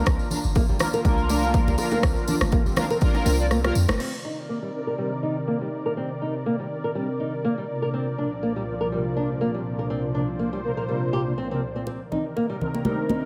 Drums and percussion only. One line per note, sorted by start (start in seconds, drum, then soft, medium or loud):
0.06 kick loud
0.06 cross-stick medium
0.06 tambourine soft
0.06 muted conga medium
0.19 tambourine soft
0.31 tambourine medium
0.31 low conga medium
0.44 tambourine soft
0.55 kick loud
0.55 tambourine soft
0.55 high bongo medium
0.55 muted conga soft
0.69 tambourine soft
0.79 cross-stick medium
0.79 tambourine medium
0.79 low bongo medium
0.79 low conga medium
0.93 tambourine soft
0.93 muted conga soft
1.05 kick loud
1.05 tambourine soft
1.05 high conga loud
1.18 tambourine soft
1.29 tambourine medium
1.29 muted conga soft
1.29 high conga loud
1.43 tambourine soft
1.54 kick loud
1.54 tambourine soft
1.54 low bongo loud
1.67 tambourine soft
1.67 muted conga medium
1.78 tambourine medium
1.78 high bongo medium
1.91 tambourine soft
1.91 low bongo medium
1.91 high conga medium
2.03 kick loud
2.03 cross-stick medium
2.03 tambourine soft
2.03 muted conga medium
2.17 tambourine soft
2.28 tambourine medium
2.28 low conga medium
2.41 cross-stick medium
2.41 tambourine soft
2.41 high conga medium
2.52 kick loud
2.52 tambourine soft
2.52 high bongo medium
2.52 muted conga soft
2.66 tambourine soft
2.76 cross-stick medium
2.76 tambourine medium
2.76 low bongo loud
2.76 low conga medium
2.90 tambourine soft
2.90 muted conga medium
3.01 kick loud
3.01 tambourine soft
3.01 low bongo medium
3.15 tambourine soft
3.15 low bongo medium
3.26 tambourine medium
3.26 muted conga soft
3.26 high conga loud
3.40 tambourine soft
3.51 cross-stick medium
3.51 tambourine medium
3.51 high conga medium
3.64 cross-stick medium
3.64 tambourine soft
3.64 muted conga medium
3.75 tambourine medium
3.88 cross-stick medium
3.88 tambourine soft
3.88 low bongo medium
3.88 high conga medium
4.00 crash medium
11.87 muted conga soft
12.12 low conga medium
12.37 muted conga soft
12.61 low conga medium
12.75 muted conga soft
12.85 high conga loud
13.09 muted conga soft
13.09 high conga loud